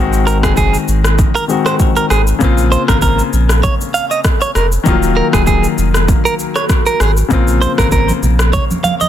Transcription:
Already playing: G#1 D#3 G#3 C4
0.00 F#4
0.13 shaker
0.27 A#4, shaker
0.43 F#1 G#4, kick, cross-stick, shaker
0.57 G#4, kick, shaker
0.74 shaker
0.88 G#1, shaker
1.04 cross-stick, shaker
1.19 kick, shaker
1.35 A#4, shaker
1.48 D#3 G#3 C4 F#4, shaker
1.66 C5, cross-stick, shaker
1.80 kick, shaker
1.96 A#4, shaker
2.10 G#1 G#4, cross-stick, shaker
2.27 shaker
2.39 A#1 C#3 A#3 C4, kick, shaker
2.44 F4
2.58 shaker
2.72 C5, shaker
2.88 G#1 A#4, kick, cross-stick, shaker
3.02 A#4, kick, shaker
3.19 shaker
3.33 A#1, shaker
3.49 cross-stick, shaker
3.63 C#5, kick, shaker
3.81 shaker
3.94 F5, shaker
4.11 D#5, shaker
4.24 kick, cross-stick, shaker
4.41 C#5, shaker
4.55 F1 A#4, cross-stick, shaker
4.72 shaker
4.83 D#1 D#3 F3 A#3, kick, shaker
4.88 F#3 F4
5.03 shaker
5.17 A#4
5.33 D#1 G#4, kick, cross-stick, shaker
5.47 G#4, kick, shaker
5.64 shaker
5.78 F1, shaker
5.94 cross-stick, shaker
6.08 kick, shaker
6.25 A#4, shaker
6.39 shaker
6.56 C#5, cross-stick, shaker
6.69 kick, cross-stick, shaker
6.86 A#4, shaker
7.00 G#1 G#4, cross-stick, shaker
7.17 shaker
7.28 A#1 C#3 A#3 C4, kick, low conga, shaker
7.33 F4
7.48 shaker
7.62 C5, high conga, shaker
7.78 G#1 A#4, kick, cross-stick, shaker
7.92 A#4, kick, shaker
8.09 high conga, shaker
8.23 A#1, low conga, shaker
8.39 cross-stick, shaker
8.53 C#5, kick, low conga, shaker
8.71 high conga, shaker
8.84 F5, high conga, shaker
9.01 D#5, high conga, shaker

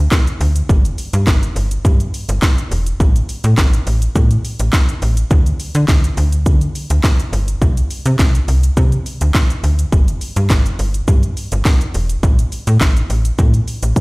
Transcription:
0.12 kick, snare, clap, shaker
0.27 closed hi-hat, shaker
0.41 D2, open hi-hat, shaker
0.56 closed hi-hat, shaker
0.69 G1, kick, shaker
0.85 closed hi-hat, shaker
0.98 open hi-hat, shaker
1.13 G2, closed hi-hat, shaker
1.27 G1, kick, snare, clap, shaker
1.43 closed hi-hat, shaker
1.56 G1, open hi-hat, shaker
1.71 closed hi-hat, shaker
1.85 G2, kick, shaker
2.00 closed hi-hat, shaker
2.14 open hi-hat, shaker
2.29 G1, closed hi-hat, shaker
2.42 kick, snare, clap, shaker
2.58 closed hi-hat, shaker
2.71 E1, open hi-hat, shaker
2.86 closed hi-hat, shaker
3.00 A1, kick, shaker
3.16 closed hi-hat, shaker
3.29 open hi-hat, shaker
3.44 A2, closed hi-hat, shaker
3.58 A1, kick, snare, clap, shaker
3.73 closed hi-hat, shaker
3.87 A1, open hi-hat, shaker
4.02 closed hi-hat, shaker
4.16 A2, kick, shaker
4.31 closed hi-hat, shaker
4.45 open hi-hat, shaker
4.59 A1, closed hi-hat, shaker
4.73 kick, snare, clap, shaker
4.89 closed hi-hat, shaker
5.02 A1, open hi-hat, shaker
5.17 closed hi-hat, shaker
5.31 D2, kick, shaker
5.46 closed hi-hat, shaker
5.60 open hi-hat, shaker
5.75 D3, closed hi-hat, shaker
5.88 D2, kick, snare, clap, shaker
6.04 closed hi-hat, shaker
6.17 D2, open hi-hat, shaker
6.32 closed hi-hat, shaker
6.46 D3, kick, shaker
6.61 closed hi-hat, shaker
6.75 open hi-hat, shaker
6.90 D2, closed hi-hat, shaker
7.04 kick, snare, clap, shaker
7.20 closed hi-hat, shaker
7.33 G1, open hi-hat, shaker
7.48 closed hi-hat, shaker
7.62 C2, kick, shaker
7.77 closed hi-hat, shaker
7.91 open hi-hat, shaker
8.06 C3, closed hi-hat, shaker
8.19 C2, kick, snare, clap, shaker
8.35 closed hi-hat, shaker
8.48 C2, open hi-hat, shaker
8.63 closed hi-hat, shaker
8.77 C3, kick, shaker
8.92 closed hi-hat, shaker
9.06 open hi-hat, shaker
9.21 D2, closed hi-hat, shaker
9.35 kick, snare, clap, shaker
9.50 closed hi-hat, shaker
9.64 D2, open hi-hat, shaker
9.79 closed hi-hat, shaker
9.92 G1, kick, shaker
10.08 closed hi-hat, shaker
10.21 open hi-hat, shaker
10.36 G2, closed hi-hat, shaker
10.50 G1, kick, snare, clap, shaker
10.66 closed hi-hat, shaker
10.79 G1, open hi-hat, shaker
10.94 closed hi-hat, shaker
11.08 G2, kick, shaker
11.23 closed hi-hat, shaker
11.37 open hi-hat, shaker
11.52 G1, closed hi-hat, shaker
11.65 kick, snare, clap, shaker
11.81 closed hi-hat, shaker
11.94 E1, open hi-hat, shaker
12.09 closed hi-hat, shaker
12.23 A1, kick, shaker
12.39 closed hi-hat, shaker
12.52 open hi-hat, shaker
12.67 A2, closed hi-hat, shaker
12.81 A1, kick, snare, clap, shaker
12.97 closed hi-hat, shaker
13.10 A1, open hi-hat, shaker
13.25 closed hi-hat, shaker
13.39 A2, kick, shaker
13.54 closed hi-hat, shaker
13.68 open hi-hat, shaker
13.83 A1, closed hi-hat, shaker
13.96 kick, high tom, shaker

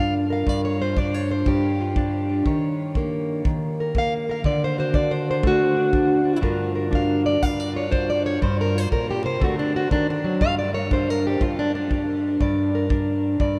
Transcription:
Already playing: G2 F4 F5
0.00 D4
0.30 A#4 F5
0.47 G2 D5, kick
0.65 C#5
0.82 F4 C5
0.97 D4 D5, kick
1.14 C#5
1.31 C5
1.46 G2 G4, kick
1.81 F4
1.96 D4, kick
2.29 F4
2.46 D#3 C#5, kick
2.95 A#3, kick
3.45 D#3, kick
3.80 A#4
3.95 A#3 F5, kick
4.29 A#4 F5
4.44 D3 D5, kick
4.64 C5
4.78 F#4 C5
4.93 D4 D5, kick
5.11 C5
5.31 C5
5.43 A3, kick
5.47 F#4
5.77 D4
5.93 D4, kick
6.25 D4
6.41 G2 D4 F4 A#4, kick
6.75 A#4
6.91 D4, kick
6.95 F5
7.26 D5
7.41 G2 F5, kick
7.60 D5
7.74 F4 C#5
7.91 D4 C5, kick
8.10 D5
8.26 C#5
8.42 G2 C5, kick
8.61 A#4
8.75 F4 C5
8.91 A#2 A#4, kick
9.11 G4
9.24 C3 C5
9.40 D3 A3 C4 F#4, kick
9.59 D4
9.76 F#4
9.91 D#3 D4, kick
10.24 F#3
10.41 G2 F5, kick
10.59 D5
10.74 A#4 C#5
10.91 D4 C5, kick
11.10 A#4
11.27 G4
11.40 G2 F4, kick
11.59 D4
11.75 D4
11.91 D4, kick
12.40 G2 D5, kick
12.75 A#4
12.90 D4, kick
13.40 G2 D5, kick

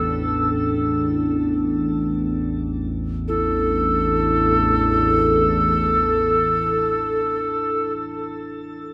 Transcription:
Already playing: A1 E2 D4 A4
3.28 A1 E2 E4 A4

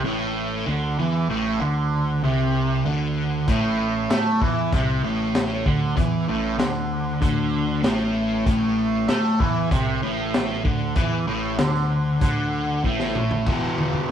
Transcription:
0.04 A1 A2
0.67 D2 D3
0.98 E2 E3
1.29 A1 A2
1.60 D2 D3
2.23 C2 C3
2.86 D2 D3
3.48 A1 A2, kick, closed hi-hat
4.10 A2 A3, snare, closed hi-hat
4.41 E2 E3, kick
4.72 C2 C3, kick, closed hi-hat
5.04 A1 A2
5.35 snare, closed hi-hat
5.66 D2 D3, kick
5.96 E2 E3, kick, closed hi-hat
6.28 A1 A2
6.58 D2 D3, snare, closed hi-hat
7.21 D2 D3, kick, closed hi-hat
7.83 A1 A2, snare, closed hi-hat
8.46 A1 A2, kick, closed hi-hat
9.08 A2 A3, snare, closed hi-hat
9.25 snare
9.40 E2 E3, kick
9.71 C2 C3, kick, closed hi-hat
10.02 A1 A2
10.34 snare, closed hi-hat
10.65 D2 D3, kick
10.96 E2 E3, kick, closed hi-hat
11.27 A1 A2
11.58 D2 D3, snare, closed hi-hat
11.74 snare
12.21 D2 D3, kick, closed hi-hat
12.84 A1 A2, kick
13.00 snare
13.15 mid tom
13.31 floor tom
13.46 E1 E2 B2 E3, kick, floor tom, crash
13.78 E1, mid tom
13.93 floor tom

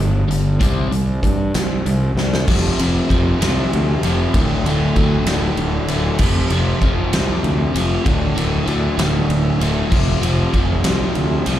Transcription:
Already playing: G1 G2 D3
0.28 G1 G2 D3, closed hi-hat
0.60 C2 C3 G3 C4, kick, closed hi-hat
0.91 C2 C3 G3, closed hi-hat
1.23 G2 C3 G3, kick, closed hi-hat
1.54 C2 C3 G3, snare, closed hi-hat
1.85 C2 C3 G3, closed hi-hat
2.15 C2, snare
2.19 C3 G3
2.34 snare
2.48 F1 F2 C3 F3, kick, crash
2.79 F1 F2 C3 F3, ride
3.09 F1 F2 C3 F3, kick, ride
3.40 C2 F2 C3 F3, snare, ride
3.73 D2, ride
4.03 F1 F2 C3 F3, ride
4.33 D1 D2 A2 D3, kick, ride
4.64 D1 D2 A2 D3, ride
4.96 D2 A2 D3, kick, ride
5.26 D1 D2 A2 D3, snare, ride
5.57 D1, ride
5.88 D1 D2 A2 D3, ride
6.19 F1 F2 C3 F3, kick, crash
6.50 F1 F2 C3 F3, ride
6.81 F1 F2 C3 F3, kick, ride
7.12 C2 F2 C3 F3, snare, ride
7.43 D2, ride
7.74 F1 F2 C3 F3, ride
8.04 D1 D2 A2 D3, kick, ride
8.35 D1 D2 A2 D3, ride
8.66 D2 A2 D3, ride
8.97 D1 D2 A2 D3, snare, ride
9.29 D1, ride
9.60 D1 D2 A2 D3, ride
9.90 F1 F2 C3 F3, kick, crash
10.21 F1 F2 C3 F3, ride
10.53 F1 F2 C3 F3, kick, ride
10.83 C2 F2 C3 F3, snare, ride
11.15 D2, ride
11.46 C2 F2 C3 F3, ride

